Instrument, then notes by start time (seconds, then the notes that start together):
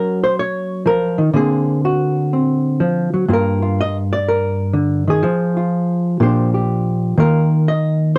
hollow-body jazz guitar
Already playing: F#3 A#3 C#4 F#4 A#4
0.24 C5
0.39 C#5
0.86 F3 A#4
1.18 D#3
1.34 D3 A#3 C4 G#4
1.85 F#4
2.33 C4
2.80 F3
3.14 F#3
3.28 G2 A#3 F4
3.33 A#4
3.62 F4
3.81 D#5
4.13 D5
4.28 A#4
4.73 D3
5.08 D#3 G#4
5.23 F3 F4
5.57 F4
6.20 A#2 F3 D4 G4 C5
6.54 G4
7.18 D#3 A#3 F4 A#4
7.68 D#5